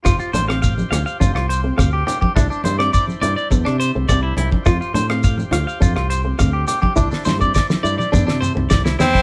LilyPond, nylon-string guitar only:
\new Staff \with { instrumentName = "Nylon-string guitar" } { \time 4/4 \key f \major \tempo 4 = 104 f'8 d'16 c'8 r16 f'8 d'8 r16 c'16 c'8 r8 | e'8 r16 c'8 r16 e'8 d'8 r16 c'16 c'8 r8 | f'8 d'16 c'8 r16 f'8 d'8 r16 c'16 c'8 r8 | e'8 d'16 c'8 r16 e'8 d'8 r16 c'16 r4 | }